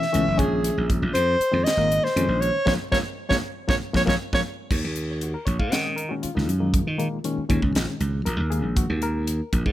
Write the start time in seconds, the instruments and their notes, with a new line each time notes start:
Already playing: soprano saxophone E5
0.02 snare
0.12 slap bass C#2, reed electric piano B2 E3 A3 C#4, closed hi-hat
0.28 slap bass F#1
0.38 slap bass A#1, reed electric piano A#2 D#3 G#3 C#4, soprano saxophone G#4, kick, closed hi-hat
0.64 closed hi-hat
0.78 slap bass A#1
0.90 kick, closed hi-hat
1.02 slap bass A#1
1.14 slap bass F2, soprano saxophone C5, closed hi-hat
1.40 muted slap bass stroke, closed hi-hat
1.52 slap bass F2, reed electric piano A#2 D#3 G#3 C4
1.64 soprano saxophone D#5, snare, closed hi-hat
1.77 slap bass G#1, reed electric piano A#2 D#3 G#3 A#3
1.92 closed hi-hat
2.04 soprano saxophone C5, snare
2.16 slap bass F2, reed electric piano A#2 D#3 G#3 C#4, closed hi-hat
2.28 slap bass A#1
2.40 soprano saxophone C#5, closed hi-hat
2.66 slap bass A#1, reed electric piano F3 G#3 A#3, soprano saxophone C#5, kick, snare
2.91 slap bass A#1, reed electric piano F3 G#3 A#3, soprano saxophone C#5, kick, snare
3.29 slap bass A#1, reed electric piano F3 G#3 A#3, soprano saxophone C#5, kick, snare
3.68 slap bass A#1, reed electric piano F3 G#3 A#3, soprano saxophone C#5, kick, snare
3.93 slap bass A#1, reed electric piano F3 G#3 A#3, soprano saxophone C#5, kick, snare
4.06 slap bass A#1, reed electric piano F3 G#3 A#3, soprano saxophone C#5, kick, snare
4.33 slap bass A#1, reed electric piano F3 G#3 A#3, soprano saxophone C#5, kick, snare
4.71 slap bass D#2, kick, crash
4.84 slap bass D#2
4.96 closed hi-hat
5.21 reed electric piano F#4, closed hi-hat
5.34 reed electric piano A#4
5.45 slap bass A#1, reed electric piano C#5, kick, closed hi-hat
5.59 slap bass G#2, reed electric piano F5, kick
5.72 reed electric piano A#2 D#3 G#3 C#4 F#5, slap bass D#3, snare, closed hi-hat
5.84 reed electric piano D#5
5.96 reed electric piano A#4, closed hi-hat
6.09 reed electric piano A#2 D#3 G#3 C#4 F#4
6.22 reed electric piano F4, muted slap bass stroke, closed hi-hat
6.35 slap bass C#2, reed electric piano A#2 D#3 G#3 D#4, snare
6.48 slap bass F#2, closed hi-hat
6.60 reed electric piano A#2 D#3 G#3 A#3
6.74 kick, closed hi-hat
6.87 slap bass D#3
6.98 reed electric piano A#2 D#3 G#3 A#3, closed hi-hat
7.24 reed electric piano A#2 D#3 G#3 C#4, closed hi-hat
7.38 muted slap bass stroke
7.49 slap bass D#2, reed electric piano A#2 D#3 G#3 C#4, kick, closed hi-hat
7.62 slap bass C#2, kick
7.75 slap bass A#1, snare, closed hi-hat
8.00 slap bass C#2, closed hi-hat
8.25 slap bass A#1, reed electric piano A#4, closed hi-hat
8.40 slap bass D#2
8.50 reed electric piano A#2 D#3 G#3 A#3 G#4, closed hi-hat
8.64 slap bass A#1
8.77 reed electric piano F#4, kick, closed hi-hat
8.90 slap bass D#2
9.02 reed electric piano A#4, closed hi-hat
9.27 closed hi-hat
9.53 slap bass A#1, kick, closed hi-hat
9.66 slap bass G#2, kick